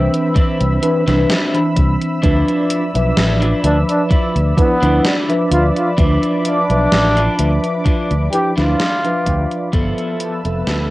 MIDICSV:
0, 0, Header, 1, 9, 480
1, 0, Start_track
1, 0, Tempo, 937500
1, 1143, Time_signature, 4, 2, 24, 8
1, 5583, End_track
2, 0, Start_track
2, 0, Title_t, "Analog synth pad"
2, 0, Program_c, 0, 89
2, 0, Note_on_c, 0, 60, 75
2, 0, Note_on_c, 0, 76, 74
2, 0, Note_on_c, 0, 83, 70
2, 0, Note_on_c, 0, 88, 89
2, 1124, Note_off_c, 0, 60, 0
2, 1124, Note_off_c, 0, 76, 0
2, 1145, Note_on_c, 0, 74, 75
2, 3042, Note_off_c, 0, 88, 0
2, 3064, Note_on_c, 0, 86, 87
2, 4962, Note_off_c, 0, 83, 0
2, 4964, Note_off_c, 0, 74, 0
2, 4964, Note_off_c, 0, 86, 0
2, 4984, Note_on_c, 0, 71, 78
2, 4984, Note_on_c, 0, 81, 74
2, 4984, Note_on_c, 0, 88, 85
2, 5583, Note_off_c, 0, 71, 0
2, 5583, Note_off_c, 0, 81, 0
2, 5583, Note_off_c, 0, 88, 0
2, 5583, End_track
3, 0, Start_track
3, 0, Title_t, "Clean electric guitar"
3, 0, Program_c, 1, 27
3, 180, Note_on_c, 1, 60, 91
3, 184, Note_on_c, 1, 62, 67
3, 185, Note_on_c, 1, 64, 80
3, 187, Note_on_c, 1, 74, 99
3, 309, Note_off_c, 1, 60, 0
3, 310, Note_off_c, 1, 62, 0
3, 311, Note_off_c, 1, 64, 0
3, 312, Note_off_c, 1, 74, 0
3, 549, Note_on_c, 1, 60, 94
3, 551, Note_on_c, 1, 62, 84
3, 555, Note_on_c, 1, 64, 77
3, 555, Note_on_c, 1, 71, 97
3, 846, Note_off_c, 1, 60, 0
3, 847, Note_off_c, 1, 62, 0
3, 848, Note_off_c, 1, 64, 0
3, 849, Note_off_c, 1, 71, 0
3, 1140, Note_on_c, 1, 62, 111
3, 1143, Note_on_c, 1, 64, 104
3, 1144, Note_on_c, 1, 65, 98
3, 1148, Note_on_c, 1, 71, 101
3, 1445, Note_off_c, 1, 62, 0
3, 1447, Note_off_c, 1, 64, 0
3, 1448, Note_off_c, 1, 65, 0
3, 1449, Note_off_c, 1, 71, 0
3, 1747, Note_on_c, 1, 62, 90
3, 1749, Note_on_c, 1, 64, 84
3, 1752, Note_on_c, 1, 65, 81
3, 1754, Note_on_c, 1, 71, 100
3, 1925, Note_off_c, 1, 62, 0
3, 1926, Note_off_c, 1, 64, 0
3, 1927, Note_off_c, 1, 65, 0
3, 1928, Note_off_c, 1, 71, 0
3, 2100, Note_on_c, 1, 62, 89
3, 2103, Note_on_c, 1, 64, 80
3, 2104, Note_on_c, 1, 65, 76
3, 2108, Note_on_c, 1, 71, 85
3, 2229, Note_off_c, 1, 62, 0
3, 2230, Note_off_c, 1, 64, 0
3, 2231, Note_off_c, 1, 65, 0
3, 2232, Note_off_c, 1, 71, 0
3, 2466, Note_on_c, 1, 62, 94
3, 2471, Note_on_c, 1, 64, 79
3, 2471, Note_on_c, 1, 65, 84
3, 2475, Note_on_c, 1, 74, 91
3, 2765, Note_off_c, 1, 62, 0
3, 2766, Note_off_c, 1, 64, 0
3, 2767, Note_off_c, 1, 65, 0
3, 2768, Note_off_c, 1, 74, 0
3, 3060, Note_on_c, 1, 62, 109
3, 3064, Note_on_c, 1, 64, 92
3, 3064, Note_on_c, 1, 65, 105
3, 3067, Note_on_c, 1, 71, 107
3, 3366, Note_off_c, 1, 62, 0
3, 3367, Note_off_c, 1, 64, 0
3, 3368, Note_off_c, 1, 65, 0
3, 3368, Note_off_c, 1, 71, 0
3, 3667, Note_on_c, 1, 62, 89
3, 3669, Note_on_c, 1, 64, 82
3, 3672, Note_on_c, 1, 65, 88
3, 3674, Note_on_c, 1, 71, 99
3, 3845, Note_off_c, 1, 62, 0
3, 3846, Note_off_c, 1, 64, 0
3, 3847, Note_off_c, 1, 65, 0
3, 3849, Note_off_c, 1, 71, 0
3, 4020, Note_on_c, 1, 62, 86
3, 4025, Note_on_c, 1, 64, 73
3, 4025, Note_on_c, 1, 65, 82
3, 4028, Note_on_c, 1, 71, 99
3, 4150, Note_off_c, 1, 62, 0
3, 4151, Note_off_c, 1, 64, 0
3, 4151, Note_off_c, 1, 65, 0
3, 4153, Note_off_c, 1, 71, 0
3, 4387, Note_on_c, 1, 62, 102
3, 4391, Note_on_c, 1, 64, 75
3, 4391, Note_on_c, 1, 65, 87
3, 4394, Note_on_c, 1, 74, 93
3, 4685, Note_off_c, 1, 62, 0
3, 4686, Note_off_c, 1, 64, 0
3, 4687, Note_off_c, 1, 65, 0
3, 4688, Note_off_c, 1, 74, 0
3, 4981, Note_on_c, 1, 59, 111
3, 4983, Note_on_c, 1, 64, 105
3, 4985, Note_on_c, 1, 65, 103
3, 4988, Note_on_c, 1, 69, 127
3, 5286, Note_off_c, 1, 59, 0
3, 5287, Note_off_c, 1, 64, 0
3, 5288, Note_off_c, 1, 65, 0
3, 5289, Note_off_c, 1, 69, 0
3, 5583, End_track
4, 0, Start_track
4, 0, Title_t, "Flugelhorn"
4, 0, Program_c, 2, 56
4, 1866, Note_on_c, 2, 62, 92
4, 1946, Note_off_c, 2, 62, 0
4, 1991, Note_on_c, 2, 62, 79
4, 2063, Note_off_c, 2, 62, 0
4, 2345, Note_on_c, 2, 59, 93
4, 2635, Note_off_c, 2, 59, 0
4, 2823, Note_on_c, 2, 65, 92
4, 2905, Note_off_c, 2, 65, 0
4, 2950, Note_on_c, 2, 65, 76
4, 3022, Note_off_c, 2, 65, 0
4, 3303, Note_on_c, 2, 62, 105
4, 3978, Note_off_c, 2, 62, 0
4, 4263, Note_on_c, 2, 67, 98
4, 4365, Note_off_c, 2, 67, 0
4, 4391, Note_on_c, 2, 65, 106
4, 5034, Note_off_c, 2, 65, 0
4, 5583, End_track
5, 0, Start_track
5, 0, Title_t, "Tine electric piano"
5, 0, Program_c, 3, 4
5, 0, Note_on_c, 3, 52, 81
5, 0, Note_on_c, 3, 60, 75
5, 0, Note_on_c, 3, 62, 74
5, 0, Note_on_c, 3, 71, 90
5, 394, Note_off_c, 3, 52, 0
5, 395, Note_off_c, 3, 60, 0
5, 396, Note_off_c, 3, 62, 0
5, 398, Note_off_c, 3, 71, 0
5, 419, Note_on_c, 3, 52, 100
5, 421, Note_on_c, 3, 60, 88
5, 424, Note_on_c, 3, 62, 88
5, 426, Note_on_c, 3, 71, 114
5, 518, Note_off_c, 3, 52, 0
5, 519, Note_off_c, 3, 60, 0
5, 520, Note_off_c, 3, 62, 0
5, 521, Note_off_c, 3, 71, 0
5, 546, Note_on_c, 3, 52, 87
5, 549, Note_on_c, 3, 60, 80
5, 551, Note_on_c, 3, 62, 77
5, 554, Note_on_c, 3, 71, 100
5, 665, Note_off_c, 3, 52, 0
5, 667, Note_off_c, 3, 60, 0
5, 668, Note_off_c, 3, 62, 0
5, 669, Note_off_c, 3, 71, 0
5, 786, Note_on_c, 3, 52, 85
5, 788, Note_on_c, 3, 60, 83
5, 791, Note_on_c, 3, 62, 84
5, 793, Note_on_c, 3, 83, 100
5, 1114, Note_off_c, 3, 52, 0
5, 1115, Note_off_c, 3, 60, 0
5, 1116, Note_off_c, 3, 62, 0
5, 1118, Note_off_c, 3, 83, 0
5, 1139, Note_on_c, 3, 53, 87
5, 1142, Note_on_c, 3, 62, 80
5, 1144, Note_on_c, 3, 76, 80
5, 1146, Note_on_c, 3, 71, 96
5, 1478, Note_off_c, 3, 53, 0
5, 1479, Note_off_c, 3, 62, 0
5, 1480, Note_off_c, 3, 76, 0
5, 1481, Note_off_c, 3, 71, 0
5, 1506, Note_on_c, 3, 53, 76
5, 1509, Note_on_c, 3, 62, 69
5, 1511, Note_on_c, 3, 76, 70
5, 1514, Note_on_c, 3, 71, 84
5, 1834, Note_off_c, 3, 53, 0
5, 1835, Note_off_c, 3, 62, 0
5, 1837, Note_off_c, 3, 76, 0
5, 1838, Note_off_c, 3, 71, 0
5, 1860, Note_on_c, 3, 53, 86
5, 1862, Note_on_c, 3, 62, 76
5, 1865, Note_on_c, 3, 76, 78
5, 1868, Note_on_c, 3, 71, 94
5, 2315, Note_off_c, 3, 53, 0
5, 2316, Note_off_c, 3, 62, 0
5, 2317, Note_off_c, 3, 76, 0
5, 2319, Note_off_c, 3, 71, 0
5, 2340, Note_on_c, 3, 53, 98
5, 2342, Note_on_c, 3, 62, 91
5, 2344, Note_on_c, 3, 64, 90
5, 2346, Note_on_c, 3, 71, 105
5, 2438, Note_off_c, 3, 53, 0
5, 2439, Note_off_c, 3, 62, 0
5, 2440, Note_off_c, 3, 64, 0
5, 2442, Note_off_c, 3, 71, 0
5, 2466, Note_on_c, 3, 53, 86
5, 2470, Note_on_c, 3, 62, 78
5, 2472, Note_on_c, 3, 64, 77
5, 2474, Note_on_c, 3, 71, 100
5, 2585, Note_off_c, 3, 53, 0
5, 2587, Note_off_c, 3, 62, 0
5, 2588, Note_off_c, 3, 64, 0
5, 2590, Note_off_c, 3, 71, 0
5, 2706, Note_on_c, 3, 53, 90
5, 2708, Note_on_c, 3, 62, 81
5, 2711, Note_on_c, 3, 76, 81
5, 2713, Note_on_c, 3, 71, 95
5, 3034, Note_off_c, 3, 53, 0
5, 3035, Note_off_c, 3, 62, 0
5, 3036, Note_off_c, 3, 76, 0
5, 3037, Note_off_c, 3, 71, 0
5, 3060, Note_on_c, 3, 53, 86
5, 3062, Note_on_c, 3, 62, 81
5, 3065, Note_on_c, 3, 76, 76
5, 3067, Note_on_c, 3, 71, 99
5, 3398, Note_off_c, 3, 53, 0
5, 3399, Note_off_c, 3, 62, 0
5, 3401, Note_off_c, 3, 76, 0
5, 3402, Note_off_c, 3, 71, 0
5, 3426, Note_on_c, 3, 53, 78
5, 3429, Note_on_c, 3, 62, 68
5, 3432, Note_on_c, 3, 76, 73
5, 3435, Note_on_c, 3, 71, 82
5, 3754, Note_off_c, 3, 53, 0
5, 3756, Note_off_c, 3, 62, 0
5, 3757, Note_off_c, 3, 76, 0
5, 3758, Note_off_c, 3, 71, 0
5, 3781, Note_on_c, 3, 53, 86
5, 3783, Note_on_c, 3, 62, 76
5, 3785, Note_on_c, 3, 76, 74
5, 3788, Note_on_c, 3, 71, 94
5, 4235, Note_off_c, 3, 53, 0
5, 4236, Note_off_c, 3, 62, 0
5, 4237, Note_off_c, 3, 76, 0
5, 4239, Note_off_c, 3, 71, 0
5, 4260, Note_on_c, 3, 53, 98
5, 4262, Note_on_c, 3, 62, 93
5, 4265, Note_on_c, 3, 64, 89
5, 4267, Note_on_c, 3, 71, 109
5, 4358, Note_off_c, 3, 53, 0
5, 4359, Note_off_c, 3, 62, 0
5, 4361, Note_off_c, 3, 64, 0
5, 4362, Note_off_c, 3, 71, 0
5, 4386, Note_on_c, 3, 53, 90
5, 4388, Note_on_c, 3, 62, 83
5, 4392, Note_on_c, 3, 64, 83
5, 4393, Note_on_c, 3, 71, 97
5, 4505, Note_off_c, 3, 53, 0
5, 4507, Note_off_c, 3, 62, 0
5, 4508, Note_off_c, 3, 64, 0
5, 4509, Note_off_c, 3, 71, 0
5, 4627, Note_on_c, 3, 53, 90
5, 4629, Note_on_c, 3, 62, 81
5, 4632, Note_on_c, 3, 76, 80
5, 4634, Note_on_c, 3, 71, 102
5, 4954, Note_off_c, 3, 53, 0
5, 4955, Note_off_c, 3, 62, 0
5, 4957, Note_off_c, 3, 76, 0
5, 4958, Note_off_c, 3, 71, 0
5, 4979, Note_on_c, 3, 53, 89
5, 4982, Note_on_c, 3, 59, 83
5, 4984, Note_on_c, 3, 76, 81
5, 4987, Note_on_c, 3, 69, 100
5, 5318, Note_off_c, 3, 53, 0
5, 5319, Note_off_c, 3, 59, 0
5, 5320, Note_off_c, 3, 76, 0
5, 5322, Note_off_c, 3, 69, 0
5, 5347, Note_on_c, 3, 53, 77
5, 5349, Note_on_c, 3, 59, 72
5, 5352, Note_on_c, 3, 76, 71
5, 5354, Note_on_c, 3, 69, 83
5, 5583, Note_off_c, 3, 53, 0
5, 5583, Note_off_c, 3, 59, 0
5, 5583, Note_off_c, 3, 69, 0
5, 5583, Note_off_c, 3, 76, 0
5, 5583, End_track
6, 0, Start_track
6, 0, Title_t, "Fretless electric bass"
6, 0, Program_c, 4, 35
6, 310, Note_on_c, 4, 36, 84
6, 393, Note_off_c, 4, 36, 0
6, 550, Note_on_c, 4, 36, 93
6, 633, Note_off_c, 4, 36, 0
6, 903, Note_on_c, 4, 36, 97
6, 997, Note_off_c, 4, 36, 0
6, 1143, Note_on_c, 4, 38, 99
6, 1237, Note_off_c, 4, 38, 0
6, 1510, Note_on_c, 4, 35, 93
6, 1593, Note_off_c, 4, 35, 0
6, 1623, Note_on_c, 4, 33, 95
6, 1803, Note_off_c, 4, 33, 0
6, 1862, Note_on_c, 4, 38, 92
6, 1956, Note_off_c, 4, 38, 0
6, 2230, Note_on_c, 4, 38, 80
6, 2313, Note_off_c, 4, 38, 0
6, 2469, Note_on_c, 4, 38, 90
6, 2552, Note_off_c, 4, 38, 0
6, 2822, Note_on_c, 4, 38, 98
6, 2916, Note_off_c, 4, 38, 0
6, 3062, Note_on_c, 4, 38, 98
6, 3156, Note_off_c, 4, 38, 0
6, 3430, Note_on_c, 4, 35, 95
6, 3513, Note_off_c, 4, 35, 0
6, 3543, Note_on_c, 4, 33, 94
6, 3723, Note_off_c, 4, 33, 0
6, 3784, Note_on_c, 4, 38, 95
6, 3877, Note_off_c, 4, 38, 0
6, 4151, Note_on_c, 4, 38, 83
6, 4233, Note_off_c, 4, 38, 0
6, 4390, Note_on_c, 4, 38, 94
6, 4473, Note_off_c, 4, 38, 0
6, 4742, Note_on_c, 4, 38, 96
6, 4836, Note_off_c, 4, 38, 0
6, 4982, Note_on_c, 4, 31, 101
6, 5076, Note_off_c, 4, 31, 0
6, 5350, Note_on_c, 4, 29, 97
6, 5433, Note_off_c, 4, 29, 0
6, 5464, Note_on_c, 4, 38, 97
6, 5583, Note_off_c, 4, 38, 0
6, 5583, End_track
7, 0, Start_track
7, 0, Title_t, "Muted clean electric guitar strokes"
7, 421, Note_on_c, 9, 29, 31
7, 472, Note_off_c, 9, 29, 0
7, 2340, Note_on_c, 9, 29, 33
7, 2391, Note_off_c, 9, 29, 0
7, 4260, Note_on_c, 9, 29, 33
7, 4312, Note_off_c, 9, 29, 0
7, 5583, End_track
8, 0, Start_track
8, 0, Title_t, "Muted fretless electric bass strokes"
8, 2102, Note_on_c, 9, 29, 46
8, 2153, Note_off_c, 9, 29, 0
8, 5583, End_track
9, 0, Start_track
9, 0, Title_t, "Drums"
9, 70, Note_on_c, 9, 42, 42
9, 122, Note_off_c, 9, 42, 0
9, 183, Note_on_c, 9, 36, 124
9, 183, Note_on_c, 9, 42, 65
9, 234, Note_off_c, 9, 36, 0
9, 234, Note_off_c, 9, 42, 0
9, 310, Note_on_c, 9, 42, 39
9, 361, Note_off_c, 9, 42, 0
9, 423, Note_on_c, 9, 42, 89
9, 475, Note_off_c, 9, 42, 0
9, 551, Note_on_c, 9, 38, 39
9, 551, Note_on_c, 9, 42, 40
9, 602, Note_off_c, 9, 38, 0
9, 602, Note_off_c, 9, 42, 0
9, 664, Note_on_c, 9, 38, 124
9, 664, Note_on_c, 9, 42, 65
9, 715, Note_off_c, 9, 38, 0
9, 715, Note_off_c, 9, 42, 0
9, 791, Note_on_c, 9, 42, 40
9, 842, Note_off_c, 9, 42, 0
9, 903, Note_on_c, 9, 36, 64
9, 904, Note_on_c, 9, 42, 94
9, 954, Note_off_c, 9, 36, 0
9, 955, Note_off_c, 9, 42, 0
9, 1031, Note_on_c, 9, 42, 39
9, 1082, Note_off_c, 9, 42, 0
9, 1143, Note_on_c, 9, 36, 118
9, 1144, Note_on_c, 9, 42, 65
9, 1194, Note_off_c, 9, 36, 0
9, 1195, Note_off_c, 9, 42, 0
9, 1271, Note_on_c, 9, 42, 38
9, 1322, Note_off_c, 9, 42, 0
9, 1383, Note_on_c, 9, 42, 93
9, 1434, Note_off_c, 9, 42, 0
9, 1511, Note_on_c, 9, 42, 37
9, 1562, Note_off_c, 9, 42, 0
9, 1623, Note_on_c, 9, 38, 119
9, 1623, Note_on_c, 9, 42, 61
9, 1674, Note_off_c, 9, 38, 0
9, 1674, Note_off_c, 9, 42, 0
9, 1751, Note_on_c, 9, 42, 37
9, 1802, Note_off_c, 9, 42, 0
9, 1863, Note_on_c, 9, 42, 85
9, 1915, Note_off_c, 9, 42, 0
9, 1991, Note_on_c, 9, 42, 40
9, 2043, Note_off_c, 9, 42, 0
9, 2103, Note_on_c, 9, 36, 115
9, 2104, Note_on_c, 9, 42, 61
9, 2154, Note_off_c, 9, 36, 0
9, 2155, Note_off_c, 9, 42, 0
9, 2232, Note_on_c, 9, 42, 40
9, 2283, Note_off_c, 9, 42, 0
9, 2343, Note_on_c, 9, 36, 113
9, 2344, Note_on_c, 9, 42, 93
9, 2394, Note_off_c, 9, 36, 0
9, 2395, Note_off_c, 9, 42, 0
9, 2471, Note_on_c, 9, 42, 41
9, 2522, Note_off_c, 9, 42, 0
9, 2583, Note_on_c, 9, 38, 112
9, 2583, Note_on_c, 9, 42, 65
9, 2635, Note_off_c, 9, 38, 0
9, 2635, Note_off_c, 9, 42, 0
9, 2712, Note_on_c, 9, 42, 39
9, 2763, Note_off_c, 9, 42, 0
9, 2824, Note_on_c, 9, 42, 91
9, 2875, Note_off_c, 9, 42, 0
9, 2951, Note_on_c, 9, 42, 37
9, 3003, Note_off_c, 9, 42, 0
9, 3062, Note_on_c, 9, 36, 120
9, 3063, Note_on_c, 9, 42, 65
9, 3113, Note_off_c, 9, 36, 0
9, 3114, Note_off_c, 9, 42, 0
9, 3190, Note_on_c, 9, 42, 37
9, 3242, Note_off_c, 9, 42, 0
9, 3303, Note_on_c, 9, 42, 89
9, 3354, Note_off_c, 9, 42, 0
9, 3431, Note_on_c, 9, 42, 37
9, 3482, Note_off_c, 9, 42, 0
9, 3544, Note_on_c, 9, 38, 122
9, 3544, Note_on_c, 9, 42, 60
9, 3595, Note_off_c, 9, 38, 0
9, 3595, Note_off_c, 9, 42, 0
9, 3671, Note_on_c, 9, 42, 38
9, 3722, Note_off_c, 9, 42, 0
9, 3783, Note_on_c, 9, 42, 90
9, 3834, Note_off_c, 9, 42, 0
9, 3911, Note_on_c, 9, 42, 39
9, 3962, Note_off_c, 9, 42, 0
9, 4022, Note_on_c, 9, 36, 110
9, 4023, Note_on_c, 9, 42, 61
9, 4073, Note_off_c, 9, 36, 0
9, 4074, Note_off_c, 9, 42, 0
9, 4151, Note_on_c, 9, 42, 38
9, 4202, Note_off_c, 9, 42, 0
9, 4263, Note_on_c, 9, 42, 90
9, 4314, Note_off_c, 9, 42, 0
9, 4391, Note_on_c, 9, 38, 38
9, 4391, Note_on_c, 9, 42, 39
9, 4442, Note_off_c, 9, 38, 0
9, 4442, Note_off_c, 9, 42, 0
9, 4504, Note_on_c, 9, 38, 111
9, 4504, Note_on_c, 9, 42, 61
9, 4555, Note_off_c, 9, 38, 0
9, 4555, Note_off_c, 9, 42, 0
9, 4631, Note_on_c, 9, 42, 38
9, 4682, Note_off_c, 9, 42, 0
9, 4742, Note_on_c, 9, 36, 58
9, 4743, Note_on_c, 9, 42, 91
9, 4794, Note_off_c, 9, 36, 0
9, 4794, Note_off_c, 9, 42, 0
9, 4871, Note_on_c, 9, 42, 37
9, 4922, Note_off_c, 9, 42, 0
9, 4982, Note_on_c, 9, 36, 111
9, 4983, Note_on_c, 9, 42, 68
9, 5034, Note_off_c, 9, 36, 0
9, 5034, Note_off_c, 9, 42, 0
9, 5110, Note_on_c, 9, 42, 40
9, 5161, Note_off_c, 9, 42, 0
9, 5223, Note_on_c, 9, 42, 94
9, 5274, Note_off_c, 9, 42, 0
9, 5350, Note_on_c, 9, 42, 39
9, 5402, Note_off_c, 9, 42, 0
9, 5463, Note_on_c, 9, 38, 114
9, 5463, Note_on_c, 9, 42, 65
9, 5515, Note_off_c, 9, 38, 0
9, 5515, Note_off_c, 9, 42, 0
9, 5583, End_track
0, 0, End_of_file